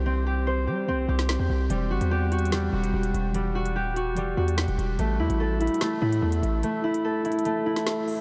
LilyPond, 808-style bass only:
\new Staff \with { instrumentName = "808-style bass" } { \clef bass \time 4/4 \key e \minor \tempo 4 = 146 c,4. g8 c,8 c,8. e,16 c,8 | e,,8 g,,16 e,4.~ e,16 e,,8 e,,8 e,,8~ | e,,4 dis,,8. e,,8. e,8. e,,16 e,,8 | a,,8 e,16 a,,4 r8. a,8 e,8 a,,8 |
r1 | }